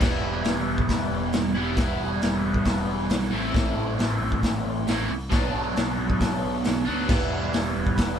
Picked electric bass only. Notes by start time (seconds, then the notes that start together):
0.01 E1
0.22 E1
0.44 E1
0.66 E1
0.89 E1
1.11 E1
1.34 E1
1.55 E1
1.77 E1
2.00 E1
2.22 E1
2.44 E1
2.65 E1
2.87 E1
3.09 B1
3.33 A1
3.54 A1
3.77 A1
3.99 A1
4.21 A1
4.43 A1
4.65 A1
4.87 A1
5.10 C2
5.32 B1
5.54 B1
5.76 B1
5.99 B1
6.21 B1
6.44 B1
6.66 B1
6.88 D2
7.09 E1
7.32 E1
7.54 E1
7.76 E1
7.98 E1